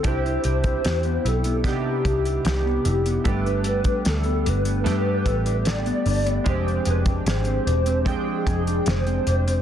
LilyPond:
<<
  \new Staff \with { instrumentName = "Soft synth lead" } { \time 4/4 \key c \major \tempo 4 = 75 c''8 c''4 a'8 g'4 g'4 | b'8 b'8 a'8 b'4. d''4 | c''8 b'8 c''4 aes'4 c''4 | }
  \new Staff \with { instrumentName = "Clean electric guitar" } { \time 4/4 \key c \major g'16 e'16 g'16 e'16 g'16 b16 e'16 b16 <c g'>16 e'16 g'16 e'16 g'16 b16 e'16 b16 | <g a'>16 d'16 a'16 d'16 a'16 b16 d'16 b16 <g a'>16 d'16 a'16 d'16 a'16 b16 d'16 b16 | <f aes'>16 d'16 aes'16 d'16 aes'16 c'16 d'16 c'16 <f aes'>16 d'16 aes'16 d'16 aes'16 c'16 d'16 c'16 | }
  \new Staff \with { instrumentName = "Synth keys" } { \time 4/4 \key c \major <c' d' e' g'>4. r8 <b d' ees' e' g'>4. r8 | <a b d' g'>4. r8 <a b d' g'>4. r8 | <aes c' d' g'>4. r8 <aes c' d' g''>4. r8 | }
  \new Staff \with { instrumentName = "Picked electric bass" } { \clef bass \time 4/4 \key c \major c,8 c,8 e,8 b,,8. r16 c,8 c,8 f,,8 | g,,4 d,8 g,,8 g,8 a,,4 g,,8 | f,,8 f,,8 aes,,8 e,,8. r16 f,,8 f,,8 f,,8 | }
  \new DrumStaff \with { instrumentName = "Drums" } \drummode { \time 4/4 <hh bd>16 hh16 hh16 <hh bd>16 <hh sn>16 hh16 hh16 hh16 <hh bd sn>8 <hh bd>16 hh16 <hh sn>8 hh16 hh16 | <hh bd>16 hh16 hh16 <hh bd>16 <hh sn>16 hh16 hh16 hh16 <hh sn>8 <hh bd>16 hh16 <hh sn>16 hh16 hho16 hh16 | <hh bd>16 hh16 hh16 <hh bd>16 <hh sn>16 hh16 hh16 hh16 <hh bd>8 <hh bd>16 hh16 <hh sn>16 hh16 hh16 hh16 | }
>>